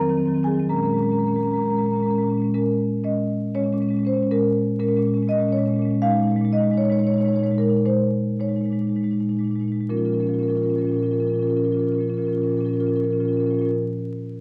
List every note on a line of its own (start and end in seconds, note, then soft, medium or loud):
0.00 0.10 D#3 soft
0.00 0.09 F#3 soft
0.00 0.09 C4 soft
0.00 0.40 A#4 medium
0.00 0.41 A#5 medium
0.09 0.20 D#3 soft
0.09 0.19 F#3 soft
0.09 0.18 C4 soft
0.18 0.29 D#3 soft
0.18 0.27 F#3 soft
0.18 0.25 C4 soft
0.25 0.38 D#3 soft
0.25 0.36 F#3 soft
0.25 0.34 C4 soft
0.34 0.48 D#3 soft
0.34 0.45 F#3 soft
0.34 0.43 C4 soft
0.43 0.54 F#3 soft
0.43 0.52 C4 soft
0.43 0.68 G#4 soft
0.43 0.68 G#5 medium
0.48 0.57 D#3 soft
0.48 0.60 C4 soft
0.54 0.67 D#3 soft
0.54 0.62 F#3 soft
0.60 0.67 F#3 soft
0.60 0.67 C4 soft
0.69 0.79 A#2 soft
0.69 0.78 G#3 soft
0.69 0.76 C#4 soft
0.69 0.78 A#4 soft
0.69 0.76 A#5 medium
0.76 0.89 A#2 soft
0.76 0.86 G#3 soft
0.76 0.83 C#4 soft
0.76 0.85 A#4 soft
0.76 0.83 A#5 soft
0.83 0.94 G#3 soft
0.83 0.90 C#4 soft
0.83 0.91 A#4 soft
0.83 0.89 A#5 soft
0.89 0.98 A#2 soft
0.89 0.97 C#4 soft
0.89 0.98 A#4 soft
0.89 0.97 A#5 soft
0.94 1.02 G#3 soft
0.94 1.04 C#4 soft
0.94 1.03 A#5 soft
0.98 1.08 A#2 soft
0.98 1.05 A#4 soft
1.02 1.11 G#3 soft
1.02 1.12 C#4 soft
1.02 1.13 A#4 soft
1.02 1.09 A#5 soft
1.08 1.17 A#2 soft
1.08 1.19 G#3 soft
1.08 1.16 A#5 soft
1.12 1.20 C#4 soft
1.12 1.20 A#4 soft
1.16 1.27 A#2 soft
1.16 1.28 G#3 soft
1.16 1.28 C#4 soft
1.16 1.26 A#4 soft
1.16 1.24 A#5 soft
1.24 1.38 A#2 soft
1.24 1.34 A#4 soft
1.24 1.31 A#5 soft
1.28 1.36 G#3 soft
1.28 1.35 C#4 soft
1.28 1.38 A#5 soft
1.34 1.45 G#3 soft
1.34 1.43 C#4 soft
1.34 1.41 A#4 soft
1.34 1.44 A#5 soft
1.38 1.49 A#2 soft
1.38 1.47 A#4 soft
1.43 1.53 G#3 soft
1.43 1.49 C#4 soft
1.43 1.51 A#5 soft
1.47 1.58 A#2 soft
1.47 1.57 C#4 soft
1.47 1.55 A#4 soft
1.51 1.61 G#3 soft
1.51 1.62 A#4 soft
1.51 1.58 A#5 soft
1.57 1.68 A#2 soft
1.57 1.63 C#4 soft
1.57 1.65 A#5 soft
1.61 1.70 G#3 soft
1.61 1.71 C#4 soft
1.61 1.69 A#4 soft
1.65 1.77 A#2 soft
1.65 1.76 A#4 soft
1.65 1.71 A#5 soft
1.70 1.78 G#3 soft
1.70 1.79 C#4 soft
1.70 1.78 A#5 soft
1.76 1.86 A#2 soft
1.76 1.86 G#3 soft
1.76 1.86 C#4 soft
1.76 1.83 A#4 soft
1.76 1.85 A#5 soft
1.83 1.96 A#2 soft
1.83 1.95 G#3 soft
1.83 1.93 C#4 soft
1.83 1.91 A#4 soft
1.83 1.92 A#5 soft
1.91 2.00 C#4 soft
1.91 1.97 A#4 soft
1.91 2.00 A#5 soft
1.95 2.05 A#2 soft
1.95 2.02 G#3 soft
1.95 2.03 A#4 soft
2.00 2.11 G#3 soft
2.00 2.08 C#4 soft
2.00 2.11 A#4 soft
2.00 2.07 A#5 soft
2.05 2.14 A#2 soft
2.05 2.15 C#4 soft
2.05 2.14 A#5 soft
2.11 2.23 A#2 soft
2.11 2.18 G#3 soft
2.11 2.17 A#4 soft
2.11 2.21 A#5 soft
2.15 2.27 G#3 soft
2.15 2.23 C#4 soft
2.15 2.25 A#4 soft
2.21 2.32 A#2 soft
2.21 2.30 C#4 soft
2.21 2.24 A#5 soft
2.27 2.34 G#3 soft
2.27 2.38 C#4 soft
2.32 2.40 A#2 soft
2.32 2.42 G#3 soft
2.38 2.50 A#2 soft
2.38 2.44 C#4 soft
2.42 2.50 G#3 soft
2.42 2.50 C#4 soft
2.54 3.03 A#2 soft
2.54 3.03 G#3 soft
2.54 3.03 C#4 soft
2.54 3.02 A#4 medium
3.04 3.53 A#2 soft
3.04 3.53 G#3 soft
3.04 3.53 C#4 soft
3.04 3.53 D#5 medium
3.55 3.65 A#2 soft
3.55 3.63 G#3 soft
3.55 3.64 C#4 soft
3.55 4.03 C#5 medium
3.63 3.74 A#2 soft
3.63 3.73 G#3 soft
3.63 3.73 C#4 soft
3.73 3.84 A#2 soft
3.73 3.81 G#3 soft
3.73 3.82 C#4 soft
3.81 3.93 A#2 soft
3.81 3.91 G#3 soft
3.81 3.89 C#4 soft
3.89 3.99 G#3 soft
3.89 3.97 C#4 soft
3.93 4.03 A#2 soft
3.93 4.05 C#4 soft
3.99 4.13 A#2 soft
3.99 4.08 G#3 soft
4.05 4.17 G#3 soft
4.05 4.14 C#4 soft
4.05 4.29 C5 medium
4.13 4.22 A#2 soft
4.13 4.27 G#3 soft
4.13 4.23 C#4 soft
4.22 4.27 A#2 soft
4.22 4.27 C#4 soft
4.31 4.78 A#2 medium
4.31 4.78 G#3 soft
4.31 4.78 C#4 soft
4.31 4.78 A#4 medium
4.79 4.89 A#2 medium
4.79 4.88 G#3 soft
4.79 4.88 C#4 soft
4.79 5.27 A#4 medium
4.88 4.98 A#2 soft
4.88 4.96 G#3 soft
4.88 4.97 C#4 soft
4.96 5.08 A#2 soft
4.96 5.05 G#3 soft
4.96 5.05 C#4 soft
5.05 5.17 A#2 soft
5.05 5.14 G#3 soft
5.05 5.14 C#4 soft
5.14 5.28 A#2 soft
5.14 5.23 G#3 soft
5.14 5.22 C#4 soft
5.22 5.30 G#3 soft
5.22 5.32 C#4 soft
5.28 5.38 A#2 soft
5.28 5.39 G#3 soft
5.28 5.40 C#4 soft
5.28 5.52 D#5 medium
5.38 5.48 A#2 soft
5.38 5.49 G#3 soft
5.38 5.48 C#4 soft
5.48 5.58 A#2 soft
5.48 5.58 G#3 soft
5.48 5.57 C#4 soft
5.52 6.00 C#5 medium
5.57 5.69 A#2 soft
5.57 5.67 G#3 soft
5.57 5.66 C#4 soft
5.66 5.79 A#2 soft
5.66 5.76 G#3 soft
5.66 5.74 C#4 soft
5.74 5.85 G#3 soft
5.74 5.82 C#4 soft
5.79 5.89 A#2 soft
5.79 5.91 C#4 soft
5.85 5.99 A#2 soft
5.85 5.94 G#3 soft
5.91 5.99 G#3 soft
5.91 5.99 C#4 soft
6.02 6.11 A#2 medium
6.02 6.11 G#3 medium
6.02 6.10 D#4 soft
6.02 6.50 F5 medium
6.10 6.21 A#2 soft
6.10 6.20 G#3 soft
6.10 6.17 D#4 soft
6.17 6.28 G#3 soft
6.17 6.23 D#4 soft
6.21 6.32 A#2 soft
6.21 6.30 D#4 soft
6.28 6.36 G#3 soft
6.28 6.38 D#4 soft
6.32 6.41 A#2 soft
6.36 6.45 G#3 soft
6.36 6.44 D#4 soft
6.41 6.51 A#2 soft
6.41 6.54 G#3 soft
6.41 6.52 D#4 soft
6.51 6.61 A#2 soft
6.51 6.63 G#3 soft
6.51 6.58 D#4 soft
6.51 6.77 D#5 medium
6.58 6.70 A#2 soft
6.58 6.66 D#4 soft
6.63 6.72 G#3 soft
6.63 6.73 D#4 soft
6.70 6.81 A#2 soft
6.70 6.80 G#3 soft
6.70 6.81 D#4 soft
6.77 6.90 A#2 soft
6.77 6.90 G#3 soft
6.77 6.89 D#4 soft
6.77 6.85 C#5 medium
6.85 6.92 C#5 medium
6.89 7.00 A#2 soft
6.89 6.99 G#3 soft
6.89 6.97 D#4 soft
6.89 6.99 C#5 medium
6.97 7.10 A#2 soft
6.97 7.08 G#3 soft
6.97 7.04 D#4 soft
6.97 7.07 C#5 medium
7.04 7.12 D#4 soft
7.04 7.14 C#5 medium
7.08 7.20 A#2 soft
7.08 7.16 G#3 soft
7.08 7.18 D#4 soft
7.14 7.25 G#3 soft
7.14 7.21 C#5 medium
7.18 7.29 A#2 soft
7.18 7.26 D#4 soft
7.18 7.28 C#5 medium
7.25 7.34 G#3 soft
7.25 7.32 D#4 soft
7.25 7.36 C#5 medium
7.29 7.40 A#2 soft
7.29 7.39 D#4 soft
7.34 7.43 G#3 soft
7.34 7.44 C#5 medium
7.39 7.51 A#2 soft
7.39 7.46 D#4 soft
7.43 7.51 G#3 soft
7.43 7.54 D#4 soft
7.43 7.54 C#5 medium
7.51 7.60 A#2 soft
7.51 7.60 G#3 soft
7.51 7.62 D#4 soft
7.58 7.70 A#2 soft
7.58 7.68 G#3 soft
7.58 7.70 D#4 soft
7.58 7.84 A#4 medium
7.68 7.80 A#2 soft
7.68 7.80 G#3 soft
7.68 7.77 D#4 soft
7.77 7.80 D#4 soft
7.85 8.38 A#2 medium
7.85 8.38 G#3 soft
7.85 8.39 D#4 soft
7.85 8.38 C5 medium
8.40 8.51 A#2 soft
8.40 8.49 G#3 soft
8.40 8.48 D#4 soft
8.40 8.95 C#5 medium
8.48 8.61 A#2 soft
8.48 8.57 G#3 soft
8.48 8.56 D#4 soft
8.56 8.66 G#3 soft
8.56 8.64 D#4 soft
8.61 8.71 A#2 soft
8.61 8.72 D#4 soft
8.66 8.73 G#3 soft
8.71 8.81 A#2 soft
8.71 8.81 G#3 soft
8.71 8.80 D#4 soft
8.80 8.92 A#2 soft
8.80 8.89 G#3 soft
8.80 8.87 D#4 soft
8.87 8.96 G#3 soft
8.87 8.96 D#4 soft
8.92 9.01 A#2 soft
8.92 9.03 D#4 soft
8.96 9.04 G#3 soft
9.01 9.12 A#2 soft
9.01 9.13 G#3 soft
9.01 9.11 D#4 soft
9.11 9.21 A#2 soft
9.11 9.21 G#3 soft
9.11 9.20 D#4 soft
9.20 9.31 A#2 soft
9.20 9.29 G#3 soft
9.20 9.29 D#4 soft
9.29 9.41 A#2 soft
9.29 9.39 G#3 soft
9.29 9.37 D#4 soft
9.37 9.51 A#2 soft
9.37 9.47 G#3 soft
9.37 9.44 D#4 soft
9.44 9.55 G#3 soft
9.44 9.51 D#4 soft
9.51 9.61 A#2 soft
9.51 9.60 D#4 soft
9.55 9.63 G#3 soft
9.60 9.72 A#2 soft
9.60 9.72 G#3 soft
9.60 9.68 D#4 soft
9.68 9.76 D#4 soft
9.72 9.86 A#2 soft
9.72 9.81 G#3 soft
9.72 9.86 D#4 soft
9.81 9.86 G#3 soft
9.89 10.00 A#2 soft
9.89 9.99 F3 soft
9.89 9.98 C#4 soft
9.89 9.97 F4 soft
9.89 9.97 A#4 soft
9.97 10.10 A#2 soft
9.97 10.09 F3 soft
9.97 10.06 C#4 soft
9.97 10.05 F4 soft
9.97 10.05 A#4 soft
10.05 10.14 C#4 soft
10.05 10.13 F4 soft
10.05 10.12 A#4 soft
10.09 10.20 A#2 soft
10.09 10.19 F3 soft
10.09 10.20 A#4 soft
10.13 10.23 C#4 soft
10.13 10.21 F4 soft
10.19 10.30 A#2 soft
10.19 10.29 F3 soft
10.19 10.29 C#4 soft
10.19 10.28 F4 soft
10.19 10.27 A#4 soft
10.27 10.40 A#2 soft
10.27 10.39 F3 soft
10.27 10.39 C#4 soft
10.27 10.34 F4 soft
10.27 10.35 A#4 soft
10.34 10.42 F4 soft
10.34 10.43 A#4 soft
10.39 10.52 A#2 soft
10.39 10.48 F3 soft
10.39 10.48 C#4 soft
10.39 10.49 F4 soft
10.43 10.50 A#4 soft
10.48 10.62 A#2 soft
10.48 10.56 F3 soft
10.48 10.55 C#4 soft
10.48 10.57 F4 soft
10.48 10.57 A#4 soft
10.55 10.66 F3 soft
10.55 10.63 C#4 soft
10.55 10.65 F4 soft
10.55 10.64 A#4 soft
10.62 10.72 A#2 soft
10.62 10.70 C#4 soft
10.62 10.74 F4 soft
10.62 10.71 A#4 soft
10.66 10.76 F3 soft
10.70 10.81 A#2 soft
10.70 10.79 C#4 soft
10.70 10.81 F4 soft
10.70 10.78 A#4 soft
10.76 10.85 F3 soft
10.76 10.87 C#4 soft
10.76 10.85 A#4 soft
10.81 10.92 A#2 soft
10.81 10.94 F3 soft
10.81 10.89 F4 soft
10.81 10.92 A#4 soft
10.87 10.94 C#4 soft
10.87 10.97 F4 soft
10.92 11.02 A#2 soft
10.92 11.03 F3 soft
10.92 11.03 C#4 soft
10.92 10.99 A#4 soft
10.97 11.04 F4 soft
10.97 11.06 A#4 soft
11.02 11.12 A#2 soft
11.02 11.13 F3 soft
11.02 11.12 C#4 soft
11.02 11.11 F4 soft
11.06 11.13 A#4 soft
11.11 11.24 A#2 soft
11.11 11.23 F3 soft
11.11 11.20 C#4 soft
11.11 11.19 F4 soft
11.11 11.20 A#4 soft
11.19 11.30 C#4 soft
11.19 11.26 F4 soft
11.19 11.28 A#4 soft
11.23 11.34 A#2 soft
11.23 11.33 F3 soft
11.23 11.34 F4 soft
11.28 11.39 C#4 soft
11.28 11.36 A#4 soft
11.33 11.44 A#2 soft
11.33 11.43 F3 soft
11.33 11.42 F4 soft
11.33 11.43 A#4 soft
11.39 11.53 F3 soft
11.39 11.47 C#4 soft
11.39 11.50 F4 soft
11.39 11.50 A#4 soft
11.44 11.55 A#2 soft
11.44 11.57 C#4 soft
11.50 11.62 F3 soft
11.50 11.57 F4 soft
11.50 11.57 A#4 soft
11.55 11.66 A#2 soft
11.55 11.65 C#4 soft
11.55 11.65 F4 soft
11.55 11.64 A#4 soft
11.62 11.77 A#2 soft
11.62 11.72 F3 soft
11.62 11.75 C#4 soft
11.62 11.72 F4 soft
11.62 11.71 A#4 soft
11.71 11.81 F3 soft
11.71 11.84 C#4 soft
11.71 11.79 F4 soft
11.71 11.79 A#4 soft
11.77 11.87 A#2 soft
11.77 11.90 F3 soft
11.77 11.88 F4 soft
11.77 11.87 A#4 soft
11.84 11.98 A#2 soft
11.84 11.92 C#4 soft
11.84 11.94 A#4 soft
11.88 12.00 F3 soft
11.88 11.95 F4 soft
11.92 12.01 C#4 soft
11.92 12.03 F4 soft
11.92 12.01 A#4 soft
11.98 12.08 A#2 soft
11.98 12.09 F3 soft
11.98 12.10 C#4 soft
11.98 12.08 A#4 soft
12.03 12.10 F4 soft
12.08 12.18 A#2 soft
12.08 12.19 F3 soft
12.08 12.18 C#4 soft
12.08 12.17 F4 soft
12.08 12.14 A#4 soft
12.14 12.27 C#4 soft
12.14 12.25 F4 soft
12.14 12.22 A#4 soft
12.18 12.28 A#2 soft
12.18 12.28 F3 soft
12.18 12.29 A#4 soft
12.25 12.38 A#2 soft
12.25 12.38 F3 soft
12.25 12.35 C#4 soft
12.25 12.33 F4 soft
12.29 12.42 F4 soft
12.29 12.37 A#4 soft
12.35 12.49 A#2 soft
12.35 12.47 F3 soft
12.35 12.43 C#4 soft
12.35 12.44 A#4 soft
12.42 12.52 C#4 soft
12.42 12.49 F4 soft
12.42 12.50 A#4 soft
12.47 12.59 A#2 soft
12.47 12.57 F3 soft
12.47 12.56 F4 soft
12.47 12.58 A#4 soft
12.52 12.61 C#4 soft
12.56 12.71 A#2 soft
12.56 12.66 F3 soft
12.56 12.65 F4 soft
12.56 12.66 A#4 soft
12.61 12.69 C#4 soft
12.61 12.73 F4 soft
12.66 12.75 F3 soft
12.66 12.77 C#4 soft
12.66 12.74 A#4 soft
12.71 12.80 A#2 soft
12.71 12.80 F4 soft
12.71 12.80 A#4 soft
12.75 12.83 F3 soft
12.75 12.87 C#4 soft
12.80 12.90 A#2 soft
12.80 12.92 F3 soft
12.80 12.88 F4 soft
12.80 12.87 A#4 soft
12.87 13.00 A#2 soft
12.87 12.96 C#4 soft
12.87 12.96 F4 soft
12.87 12.96 A#4 soft
12.92 13.01 F3 soft
12.92 13.05 C#4 soft
12.92 13.03 A#4 soft
12.96 13.10 A#2 soft
12.96 13.04 F4 soft
13.01 13.10 F3 soft
13.01 13.13 C#4 soft
13.01 13.12 F4 soft
13.01 13.11 A#4 soft
13.10 13.20 A#2 soft
13.10 13.20 F3 soft
13.10 13.21 C#4 soft
13.10 13.20 F4 soft
13.10 13.18 A#4 soft
13.18 13.31 A#2 soft
13.18 13.29 F3 soft
13.18 13.29 C#4 soft
13.18 13.28 F4 soft
13.18 13.25 A#4 soft
13.25 13.40 F3 soft
13.25 13.37 C#4 soft
13.25 13.35 F4 soft
13.25 13.33 A#4 soft
13.31 13.40 A#2 soft
13.31 13.42 F4 soft
13.31 13.40 A#4 soft
13.37 13.51 A#2 soft
13.37 13.48 F3 soft
13.37 13.46 C#4 soft
13.37 13.47 A#4 soft
13.42 13.54 C#4 soft
13.42 13.50 F4 soft
13.47 13.57 F3 soft
13.47 13.59 F4 soft
13.47 13.54 A#4 soft
13.51 13.61 A#2 soft
13.51 13.62 C#4 soft
13.51 13.62 A#4 soft
13.57 13.75 A#2 soft
13.57 13.67 F3 soft
13.57 13.66 F4 soft
13.62 13.71 C#4 soft
13.62 13.74 F4 soft
13.62 13.70 A#4 soft
13.67 13.74 F3 soft
13.67 13.75 A#4 soft
13.71 13.75 C#4 soft